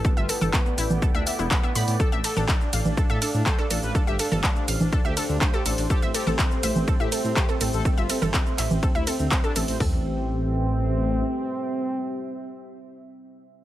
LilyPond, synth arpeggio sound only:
\new Staff \with { instrumentName = "Synth arpeggio sound" } { \time 4/4 \key a \minor \tempo 4 = 123 a'16 e''16 a'16 a'16 r8 e'16 r16 a'16 e''16 e''16 e'16 b''16 e''16 b''16 r16 | a'16 e''16 a'16 a'16 r8 f''16 r16 a'16 e''16 a'16 r16 c''16 a'16 a'16 r16 | a'16 e''16 a'16 a'16 r8 f''16 r16 a'16 e''16 a'16 r16 c''16 a'16 a'16 r16 | a'16 e''16 a'16 a'16 r8 e''16 r16 a'16 e''16 a'16 r16 c''16 a'16 a'16 r16 |
a'16 e''16 a'16 a'16 r8 e''16 r16 a'16 e''16 a'16 r16 c''16 a'16 a'16 r16 | a'8 r2. r8 | r1 | }